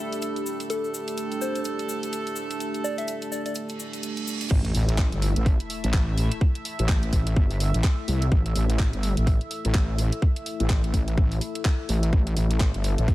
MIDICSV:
0, 0, Header, 1, 9, 480
1, 0, Start_track
1, 0, Tempo, 476190
1, 705, Time_signature, 4, 2, 24, 8
1, 13252, End_track
2, 0, Start_track
2, 0, Title_t, "Ambient pad"
2, 0, Program_c, 0, 92
2, 0, Note_on_c, 0, 69, 88
2, 0, Note_on_c, 0, 76, 81
2, 0, Note_on_c, 0, 83, 67
2, 1444, Note_on_c, 0, 81, 71
2, 1470, Note_off_c, 0, 83, 0
2, 4544, Note_off_c, 0, 69, 0
2, 4544, Note_off_c, 0, 76, 0
2, 4574, Note_off_c, 0, 81, 0
2, 13252, End_track
3, 0, Start_track
3, 0, Title_t, "Soft synth lead"
3, 0, Program_c, 1, 80
3, 0, Note_on_c, 1, 76, 90
3, 185, Note_off_c, 1, 76, 0
3, 705, Note_on_c, 1, 69, 87
3, 891, Note_off_c, 1, 69, 0
3, 1425, Note_on_c, 1, 72, 89
3, 1611, Note_off_c, 1, 72, 0
3, 2864, Note_on_c, 1, 74, 87
3, 2977, Note_off_c, 1, 74, 0
3, 3004, Note_on_c, 1, 76, 86
3, 3168, Note_off_c, 1, 76, 0
3, 3343, Note_on_c, 1, 74, 83
3, 3434, Note_off_c, 1, 74, 0
3, 3484, Note_on_c, 1, 74, 73
3, 3548, Note_off_c, 1, 74, 0
3, 13252, End_track
4, 0, Start_track
4, 0, Title_t, "Analog synth pad"
4, 0, Program_c, 2, 89
4, 0, Note_on_c, 2, 57, 78
4, 0, Note_on_c, 2, 62, 72
4, 0, Note_on_c, 2, 67, 87
4, 4504, Note_off_c, 2, 57, 0
4, 4504, Note_off_c, 2, 62, 0
4, 4532, Note_off_c, 2, 67, 0
4, 4544, Note_on_c, 2, 57, 86
4, 4544, Note_on_c, 2, 64, 77
4, 4544, Note_on_c, 2, 76, 91
4, 12212, Note_off_c, 2, 76, 0
4, 12225, Note_on_c, 2, 69, 92
4, 13252, Note_off_c, 2, 57, 0
4, 13252, Note_off_c, 2, 64, 0
4, 13252, Note_off_c, 2, 69, 0
4, 13252, End_track
5, 0, Start_track
5, 0, Title_t, "Horn section"
5, 0, Program_c, 3, 61
5, 0, Note_on_c, 3, 57, 82
5, 0, Note_on_c, 3, 64, 74
5, 0, Note_on_c, 3, 69, 94
5, 680, Note_off_c, 3, 57, 0
5, 681, Note_off_c, 3, 64, 0
5, 681, Note_off_c, 3, 69, 0
5, 704, Note_on_c, 3, 57, 85
5, 704, Note_on_c, 3, 64, 78
5, 704, Note_on_c, 3, 69, 92
5, 4520, Note_off_c, 3, 57, 0
5, 4521, Note_off_c, 3, 64, 0
5, 4521, Note_off_c, 3, 69, 0
5, 13252, End_track
6, 0, Start_track
6, 0, Title_t, "Wobble bass"
6, 0, Program_c, 4, 39
6, 4543, Note_on_c, 4, 33, 96
6, 4768, Note_off_c, 4, 33, 0
6, 4784, Note_on_c, 4, 33, 99
6, 5143, Note_off_c, 4, 33, 0
6, 5165, Note_on_c, 4, 31, 96
6, 5383, Note_off_c, 4, 31, 0
6, 5405, Note_on_c, 4, 33, 93
6, 5623, Note_off_c, 4, 33, 0
6, 5885, Note_on_c, 4, 33, 95
6, 5968, Note_off_c, 4, 33, 0
6, 5983, Note_on_c, 4, 33, 98
6, 6342, Note_off_c, 4, 33, 0
6, 6845, Note_on_c, 4, 33, 99
6, 7168, Note_off_c, 4, 33, 0
6, 7184, Note_on_c, 4, 33, 98
6, 7408, Note_off_c, 4, 33, 0
6, 7423, Note_on_c, 4, 31, 98
6, 7782, Note_off_c, 4, 31, 0
6, 7805, Note_on_c, 4, 33, 95
6, 7888, Note_off_c, 4, 33, 0
6, 8143, Note_on_c, 4, 36, 96
6, 8368, Note_off_c, 4, 36, 0
6, 8383, Note_on_c, 4, 33, 96
6, 8608, Note_off_c, 4, 33, 0
6, 8624, Note_on_c, 4, 33, 99
6, 8983, Note_off_c, 4, 33, 0
6, 9005, Note_on_c, 4, 31, 94
6, 9223, Note_off_c, 4, 31, 0
6, 9245, Note_on_c, 4, 33, 97
6, 9463, Note_off_c, 4, 33, 0
6, 9725, Note_on_c, 4, 33, 96
6, 9809, Note_off_c, 4, 33, 0
6, 9824, Note_on_c, 4, 33, 96
6, 10183, Note_off_c, 4, 33, 0
6, 10684, Note_on_c, 4, 33, 96
6, 11008, Note_off_c, 4, 33, 0
6, 11024, Note_on_c, 4, 33, 96
6, 11248, Note_off_c, 4, 33, 0
6, 11264, Note_on_c, 4, 33, 97
6, 11489, Note_off_c, 4, 33, 0
6, 11984, Note_on_c, 4, 33, 96
6, 12208, Note_off_c, 4, 33, 0
6, 12224, Note_on_c, 4, 33, 96
6, 12448, Note_off_c, 4, 33, 0
6, 12464, Note_on_c, 4, 33, 99
6, 12823, Note_off_c, 4, 33, 0
6, 12845, Note_on_c, 4, 31, 94
6, 13063, Note_off_c, 4, 31, 0
6, 13086, Note_on_c, 4, 33, 95
6, 13252, Note_off_c, 4, 33, 0
6, 13252, End_track
7, 0, Start_track
7, 0, Title_t, "Reverse cymbal"
7, 0, Program_c, 5, 119
7, 3584, Note_on_c, 5, 60, 68
7, 4544, Note_off_c, 5, 60, 0
7, 13252, End_track
8, 0, Start_track
8, 0, Title_t, "Sub drop"
8, 0, Program_c, 6, 103
8, 4544, Note_on_c, 6, 60, 77
8, 6464, Note_off_c, 6, 60, 0
8, 13252, End_track
9, 0, Start_track
9, 0, Title_t, "Drums"
9, 125, Note_on_c, 9, 42, 49
9, 128, Note_on_c, 9, 69, 34
9, 220, Note_off_c, 9, 69, 0
9, 220, Note_on_c, 9, 69, 45
9, 224, Note_off_c, 9, 42, 0
9, 224, Note_on_c, 9, 42, 58
9, 320, Note_off_c, 9, 69, 0
9, 325, Note_off_c, 9, 42, 0
9, 366, Note_on_c, 9, 42, 33
9, 370, Note_on_c, 9, 69, 21
9, 465, Note_off_c, 9, 69, 0
9, 465, Note_on_c, 9, 69, 75
9, 467, Note_off_c, 9, 42, 0
9, 566, Note_off_c, 9, 69, 0
9, 606, Note_on_c, 9, 42, 48
9, 608, Note_on_c, 9, 69, 35
9, 704, Note_off_c, 9, 42, 0
9, 704, Note_on_c, 9, 42, 63
9, 709, Note_off_c, 9, 69, 0
9, 712, Note_on_c, 9, 69, 42
9, 805, Note_off_c, 9, 42, 0
9, 813, Note_off_c, 9, 69, 0
9, 849, Note_on_c, 9, 69, 25
9, 949, Note_off_c, 9, 69, 0
9, 949, Note_on_c, 9, 69, 82
9, 1050, Note_off_c, 9, 69, 0
9, 1085, Note_on_c, 9, 69, 32
9, 1086, Note_on_c, 9, 42, 52
9, 1182, Note_off_c, 9, 69, 0
9, 1182, Note_on_c, 9, 69, 42
9, 1185, Note_off_c, 9, 42, 0
9, 1185, Note_on_c, 9, 42, 60
9, 1283, Note_off_c, 9, 69, 0
9, 1286, Note_off_c, 9, 42, 0
9, 1326, Note_on_c, 9, 69, 23
9, 1327, Note_on_c, 9, 42, 34
9, 1426, Note_off_c, 9, 69, 0
9, 1426, Note_on_c, 9, 69, 84
9, 1427, Note_off_c, 9, 42, 0
9, 1526, Note_off_c, 9, 69, 0
9, 1565, Note_on_c, 9, 69, 37
9, 1567, Note_on_c, 9, 42, 50
9, 1656, Note_off_c, 9, 69, 0
9, 1656, Note_on_c, 9, 69, 43
9, 1666, Note_off_c, 9, 42, 0
9, 1666, Note_on_c, 9, 42, 61
9, 1757, Note_off_c, 9, 69, 0
9, 1766, Note_off_c, 9, 42, 0
9, 1804, Note_on_c, 9, 69, 23
9, 1807, Note_on_c, 9, 42, 36
9, 1905, Note_off_c, 9, 69, 0
9, 1905, Note_on_c, 9, 69, 84
9, 1908, Note_off_c, 9, 42, 0
9, 2006, Note_off_c, 9, 69, 0
9, 2047, Note_on_c, 9, 42, 50
9, 2049, Note_on_c, 9, 69, 37
9, 2145, Note_off_c, 9, 42, 0
9, 2145, Note_off_c, 9, 69, 0
9, 2145, Note_on_c, 9, 42, 62
9, 2145, Note_on_c, 9, 69, 49
9, 2246, Note_off_c, 9, 42, 0
9, 2246, Note_off_c, 9, 69, 0
9, 2285, Note_on_c, 9, 69, 24
9, 2287, Note_on_c, 9, 42, 35
9, 2376, Note_off_c, 9, 69, 0
9, 2376, Note_on_c, 9, 69, 78
9, 2387, Note_off_c, 9, 42, 0
9, 2477, Note_off_c, 9, 69, 0
9, 2526, Note_on_c, 9, 42, 52
9, 2526, Note_on_c, 9, 69, 35
9, 2625, Note_off_c, 9, 42, 0
9, 2625, Note_on_c, 9, 42, 61
9, 2627, Note_off_c, 9, 69, 0
9, 2627, Note_on_c, 9, 69, 43
9, 2725, Note_off_c, 9, 42, 0
9, 2728, Note_off_c, 9, 69, 0
9, 2766, Note_on_c, 9, 42, 35
9, 2766, Note_on_c, 9, 69, 23
9, 2866, Note_off_c, 9, 69, 0
9, 2867, Note_off_c, 9, 42, 0
9, 2867, Note_on_c, 9, 69, 73
9, 2968, Note_off_c, 9, 69, 0
9, 3006, Note_on_c, 9, 42, 52
9, 3006, Note_on_c, 9, 69, 36
9, 3101, Note_off_c, 9, 69, 0
9, 3101, Note_on_c, 9, 69, 48
9, 3105, Note_off_c, 9, 42, 0
9, 3105, Note_on_c, 9, 42, 64
9, 3202, Note_off_c, 9, 69, 0
9, 3206, Note_off_c, 9, 42, 0
9, 3244, Note_on_c, 9, 69, 23
9, 3246, Note_on_c, 9, 42, 34
9, 3345, Note_off_c, 9, 69, 0
9, 3347, Note_off_c, 9, 42, 0
9, 3348, Note_on_c, 9, 69, 87
9, 3449, Note_off_c, 9, 69, 0
9, 3485, Note_on_c, 9, 42, 51
9, 3485, Note_on_c, 9, 69, 33
9, 3574, Note_off_c, 9, 69, 0
9, 3574, Note_on_c, 9, 69, 48
9, 3584, Note_off_c, 9, 42, 0
9, 3584, Note_on_c, 9, 42, 66
9, 3675, Note_off_c, 9, 69, 0
9, 3685, Note_off_c, 9, 42, 0
9, 3718, Note_on_c, 9, 69, 24
9, 3726, Note_on_c, 9, 42, 36
9, 3819, Note_off_c, 9, 69, 0
9, 3826, Note_on_c, 9, 69, 74
9, 3827, Note_off_c, 9, 42, 0
9, 3927, Note_off_c, 9, 69, 0
9, 3965, Note_on_c, 9, 42, 52
9, 3968, Note_on_c, 9, 69, 32
9, 4062, Note_off_c, 9, 69, 0
9, 4062, Note_on_c, 9, 69, 44
9, 4064, Note_off_c, 9, 42, 0
9, 4064, Note_on_c, 9, 42, 63
9, 4163, Note_off_c, 9, 69, 0
9, 4165, Note_off_c, 9, 42, 0
9, 4199, Note_on_c, 9, 69, 22
9, 4205, Note_on_c, 9, 42, 36
9, 4300, Note_off_c, 9, 69, 0
9, 4306, Note_off_c, 9, 42, 0
9, 4308, Note_on_c, 9, 69, 86
9, 4409, Note_off_c, 9, 69, 0
9, 4443, Note_on_c, 9, 69, 36
9, 4445, Note_on_c, 9, 42, 51
9, 4543, Note_on_c, 9, 36, 115
9, 4544, Note_off_c, 9, 69, 0
9, 4544, Note_on_c, 9, 49, 101
9, 4546, Note_off_c, 9, 42, 0
9, 4644, Note_off_c, 9, 36, 0
9, 4644, Note_off_c, 9, 49, 0
9, 4685, Note_on_c, 9, 42, 55
9, 4784, Note_on_c, 9, 46, 108
9, 4786, Note_off_c, 9, 42, 0
9, 4885, Note_off_c, 9, 46, 0
9, 4925, Note_on_c, 9, 42, 71
9, 5023, Note_on_c, 9, 36, 117
9, 5024, Note_on_c, 9, 39, 119
9, 5026, Note_off_c, 9, 42, 0
9, 5124, Note_off_c, 9, 36, 0
9, 5125, Note_off_c, 9, 39, 0
9, 5165, Note_on_c, 9, 42, 54
9, 5264, Note_on_c, 9, 46, 103
9, 5266, Note_off_c, 9, 42, 0
9, 5364, Note_off_c, 9, 46, 0
9, 5406, Note_on_c, 9, 42, 68
9, 5503, Note_on_c, 9, 36, 120
9, 5504, Note_on_c, 9, 46, 62
9, 5507, Note_off_c, 9, 42, 0
9, 5604, Note_off_c, 9, 36, 0
9, 5605, Note_off_c, 9, 46, 0
9, 5646, Note_on_c, 9, 42, 40
9, 5744, Note_on_c, 9, 46, 103
9, 5747, Note_off_c, 9, 42, 0
9, 5845, Note_off_c, 9, 46, 0
9, 5886, Note_on_c, 9, 42, 72
9, 5983, Note_on_c, 9, 36, 117
9, 5985, Note_on_c, 9, 39, 119
9, 5987, Note_off_c, 9, 42, 0
9, 6084, Note_off_c, 9, 36, 0
9, 6086, Note_off_c, 9, 39, 0
9, 6225, Note_on_c, 9, 46, 105
9, 6325, Note_off_c, 9, 46, 0
9, 6366, Note_on_c, 9, 42, 69
9, 6463, Note_on_c, 9, 36, 123
9, 6467, Note_off_c, 9, 42, 0
9, 6564, Note_off_c, 9, 36, 0
9, 6606, Note_on_c, 9, 42, 53
9, 6704, Note_on_c, 9, 46, 111
9, 6706, Note_off_c, 9, 42, 0
9, 6805, Note_off_c, 9, 46, 0
9, 6846, Note_on_c, 9, 42, 69
9, 6943, Note_on_c, 9, 36, 116
9, 6945, Note_on_c, 9, 39, 125
9, 6947, Note_off_c, 9, 42, 0
9, 7044, Note_off_c, 9, 36, 0
9, 7046, Note_off_c, 9, 39, 0
9, 7085, Note_on_c, 9, 42, 53
9, 7183, Note_on_c, 9, 36, 62
9, 7184, Note_on_c, 9, 46, 111
9, 7186, Note_off_c, 9, 42, 0
9, 7284, Note_off_c, 9, 36, 0
9, 7285, Note_off_c, 9, 46, 0
9, 7325, Note_on_c, 9, 42, 70
9, 7423, Note_on_c, 9, 36, 123
9, 7426, Note_off_c, 9, 42, 0
9, 7524, Note_off_c, 9, 36, 0
9, 7565, Note_on_c, 9, 46, 65
9, 7664, Note_off_c, 9, 46, 0
9, 7664, Note_on_c, 9, 46, 111
9, 7765, Note_off_c, 9, 46, 0
9, 7806, Note_on_c, 9, 42, 69
9, 7903, Note_on_c, 9, 36, 119
9, 7905, Note_on_c, 9, 39, 121
9, 7907, Note_off_c, 9, 42, 0
9, 8004, Note_off_c, 9, 36, 0
9, 8006, Note_off_c, 9, 39, 0
9, 8144, Note_on_c, 9, 46, 110
9, 8245, Note_off_c, 9, 46, 0
9, 8285, Note_on_c, 9, 42, 69
9, 8384, Note_on_c, 9, 36, 124
9, 8386, Note_off_c, 9, 42, 0
9, 8484, Note_off_c, 9, 36, 0
9, 8525, Note_on_c, 9, 42, 52
9, 8624, Note_on_c, 9, 46, 112
9, 8626, Note_off_c, 9, 42, 0
9, 8725, Note_off_c, 9, 46, 0
9, 8765, Note_on_c, 9, 42, 67
9, 8863, Note_on_c, 9, 36, 120
9, 8864, Note_on_c, 9, 39, 119
9, 8866, Note_off_c, 9, 42, 0
9, 8964, Note_off_c, 9, 36, 0
9, 8965, Note_off_c, 9, 39, 0
9, 9005, Note_on_c, 9, 42, 51
9, 9104, Note_on_c, 9, 46, 110
9, 9106, Note_off_c, 9, 42, 0
9, 9205, Note_off_c, 9, 46, 0
9, 9245, Note_on_c, 9, 42, 66
9, 9344, Note_on_c, 9, 36, 125
9, 9344, Note_on_c, 9, 46, 66
9, 9346, Note_off_c, 9, 42, 0
9, 9445, Note_off_c, 9, 36, 0
9, 9445, Note_off_c, 9, 46, 0
9, 9485, Note_on_c, 9, 42, 37
9, 9584, Note_on_c, 9, 46, 112
9, 9586, Note_off_c, 9, 42, 0
9, 9685, Note_off_c, 9, 46, 0
9, 9726, Note_on_c, 9, 42, 66
9, 9824, Note_on_c, 9, 36, 124
9, 9825, Note_on_c, 9, 39, 120
9, 9826, Note_off_c, 9, 42, 0
9, 9925, Note_off_c, 9, 36, 0
9, 9925, Note_off_c, 9, 39, 0
9, 10065, Note_on_c, 9, 46, 116
9, 10165, Note_off_c, 9, 46, 0
9, 10206, Note_on_c, 9, 42, 64
9, 10304, Note_on_c, 9, 36, 119
9, 10307, Note_off_c, 9, 42, 0
9, 10405, Note_off_c, 9, 36, 0
9, 10446, Note_on_c, 9, 42, 51
9, 10545, Note_on_c, 9, 46, 107
9, 10547, Note_off_c, 9, 42, 0
9, 10646, Note_off_c, 9, 46, 0
9, 10686, Note_on_c, 9, 42, 65
9, 10784, Note_on_c, 9, 36, 122
9, 10786, Note_on_c, 9, 39, 115
9, 10787, Note_off_c, 9, 42, 0
9, 10885, Note_off_c, 9, 36, 0
9, 10886, Note_off_c, 9, 39, 0
9, 10927, Note_on_c, 9, 42, 51
9, 11024, Note_on_c, 9, 36, 63
9, 11025, Note_on_c, 9, 46, 105
9, 11028, Note_off_c, 9, 42, 0
9, 11125, Note_off_c, 9, 36, 0
9, 11126, Note_off_c, 9, 46, 0
9, 11167, Note_on_c, 9, 42, 63
9, 11264, Note_on_c, 9, 36, 127
9, 11267, Note_off_c, 9, 42, 0
9, 11365, Note_off_c, 9, 36, 0
9, 11406, Note_on_c, 9, 46, 64
9, 11504, Note_off_c, 9, 46, 0
9, 11504, Note_on_c, 9, 46, 107
9, 11605, Note_off_c, 9, 46, 0
9, 11646, Note_on_c, 9, 42, 64
9, 11744, Note_on_c, 9, 36, 123
9, 11745, Note_on_c, 9, 39, 118
9, 11747, Note_off_c, 9, 42, 0
9, 11845, Note_off_c, 9, 36, 0
9, 11846, Note_off_c, 9, 39, 0
9, 11984, Note_on_c, 9, 46, 112
9, 12085, Note_off_c, 9, 46, 0
9, 12126, Note_on_c, 9, 42, 65
9, 12224, Note_on_c, 9, 36, 116
9, 12227, Note_off_c, 9, 42, 0
9, 12325, Note_off_c, 9, 36, 0
9, 12366, Note_on_c, 9, 42, 52
9, 12465, Note_on_c, 9, 46, 105
9, 12467, Note_off_c, 9, 42, 0
9, 12565, Note_off_c, 9, 46, 0
9, 12606, Note_on_c, 9, 42, 66
9, 12704, Note_on_c, 9, 36, 115
9, 12705, Note_on_c, 9, 39, 115
9, 12707, Note_off_c, 9, 42, 0
9, 12805, Note_off_c, 9, 36, 0
9, 12806, Note_off_c, 9, 39, 0
9, 12846, Note_on_c, 9, 42, 51
9, 12944, Note_on_c, 9, 46, 108
9, 12946, Note_off_c, 9, 42, 0
9, 13045, Note_off_c, 9, 46, 0
9, 13086, Note_on_c, 9, 42, 65
9, 13184, Note_on_c, 9, 36, 121
9, 13184, Note_on_c, 9, 46, 63
9, 13187, Note_off_c, 9, 42, 0
9, 13252, Note_off_c, 9, 36, 0
9, 13252, Note_off_c, 9, 46, 0
9, 13252, End_track
0, 0, End_of_file